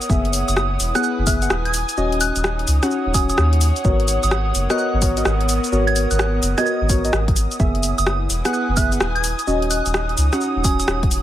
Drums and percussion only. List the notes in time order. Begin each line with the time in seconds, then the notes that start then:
0.02 closed hi-hat, shaker
0.10 kick, shaker
0.25 closed hi-hat
0.33 open hi-hat, shaker
0.48 closed hi-hat, shaker
0.57 cross-stick, shaker
0.80 open hi-hat, shaker
0.95 cross-stick, closed hi-hat, shaker
1.03 shaker
1.27 kick, open hi-hat, shaker
1.42 closed hi-hat, shaker
1.50 cross-stick, shaker
1.65 closed hi-hat
1.74 open hi-hat, shaker
1.89 closed hi-hat, shaker
1.97 shaker
2.12 closed hi-hat
2.21 open hi-hat, shaker
2.36 closed hi-hat, shaker
2.44 cross-stick, shaker
2.59 closed hi-hat
2.68 open hi-hat, shaker
2.83 cross-stick, closed hi-hat, shaker
2.91 shaker
3.14 kick, open hi-hat, shaker
3.30 closed hi-hat, shaker
3.38 cross-stick, shaker
3.53 closed hi-hat
3.61 open hi-hat, shaker
3.76 closed hi-hat, shaker
3.84 kick, shaker
4.00 closed hi-hat
4.08 open hi-hat, shaker
4.23 closed hi-hat, shaker
4.31 cross-stick, shaker
4.55 open hi-hat, shaker
4.70 cross-stick, closed hi-hat, shaker
4.78 shaker
5.02 kick, open hi-hat, shaker
5.17 closed hi-hat, shaker
5.25 cross-stick, shaker
5.41 closed hi-hat
5.49 open hi-hat, shaker
5.64 closed hi-hat, shaker
5.72 shaker
5.88 closed hi-hat
5.96 open hi-hat, shaker
6.11 closed hi-hat, shaker
6.19 cross-stick, shaker
6.43 open hi-hat, shaker
6.58 cross-stick, closed hi-hat, shaker
6.66 shaker
6.89 kick, open hi-hat, shaker
7.05 closed hi-hat, shaker
7.13 cross-stick, shaker
7.28 kick, closed hi-hat
7.36 open hi-hat, shaker
7.51 closed hi-hat, shaker
7.60 kick, shaker
7.75 closed hi-hat
7.83 open hi-hat, shaker
7.98 closed hi-hat, shaker
8.07 cross-stick, shaker
8.30 open hi-hat, shaker
8.45 cross-stick, closed hi-hat, shaker
8.54 shaker
8.77 kick, open hi-hat, shaker
8.92 closed hi-hat, shaker
9.01 cross-stick, shaker
9.16 closed hi-hat
9.24 open hi-hat, shaker
9.39 closed hi-hat, shaker
9.47 shaker
9.62 closed hi-hat
9.71 open hi-hat, shaker
9.86 closed hi-hat, shaker
9.94 cross-stick, shaker
10.09 closed hi-hat
10.18 open hi-hat, shaker
10.33 cross-stick, closed hi-hat, shaker
10.41 shaker
10.64 kick, open hi-hat, shaker
10.80 closed hi-hat, shaker
10.88 cross-stick, shaker
11.03 kick, closed hi-hat
11.11 open hi-hat, shaker